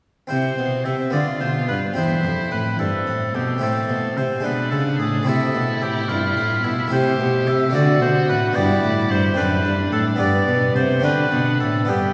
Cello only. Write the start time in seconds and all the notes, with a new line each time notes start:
0.31 C3
0.58 B2
0.86 C3
1.13 D3
1.41 B2
1.69 G2
1.96 E2
2.24 F2
2.52 A2
2.79 G2
3.07 A2
3.34 B2
3.62 A2
3.89 B2
4.17 C3
4.44 B2
4.72 C#3
4.99 A2
5.27 C3
5.54 B2
5.82 A2
6.09 G2
6.37 A2
6.64 B2
6.92 C3
7.20 B2
7.47 C3
7.75 D3
8.02 B2
8.29 A2
8.57 G2
8.84 A2
9.10 G2
9.37 F#2
9.64 G2
9.91 A2
10.19 G2
10.48 B2
10.75 C3
11.03 D3
11.32 B2
11.61 A2
11.89 G2